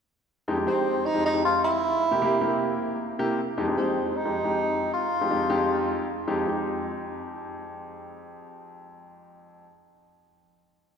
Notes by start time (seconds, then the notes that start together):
0.48 F2 G#3 D#4 G4
0.57 F2 G#3 D#4 G4
0.67 F2 G#3 C4 D#4 G4
1.06 D#4
1.14 F2 G#3 D#4 G4
1.26 D#4
1.34 F2 G#3 D#4 G4
1.45 F4
1.64 E4
2.11 C3 A#3 E4 G4
2.22 C3 A#3 E4 G4
2.41 C3 A#3 E4 G4
3.19 C3 A#3 E4 G4
3.58 F2 G#3 D#4 G4
3.67 F2 G#3 D#4 G4
3.77 F2 G#3 C4 D#4 G4
4.17 D#4
4.25 F2 G#3 D#4 G4
4.44 F2 G#3 D#4 G4
4.94 F4
5.21 F2 G#3 D#4 G4
5.31 F2 G#3 D#4 G4
5.50 F2 G#3 D#4 G4
6.28 F2 G#3 D#4 G4
6.45 F2 G#3 D#4 G4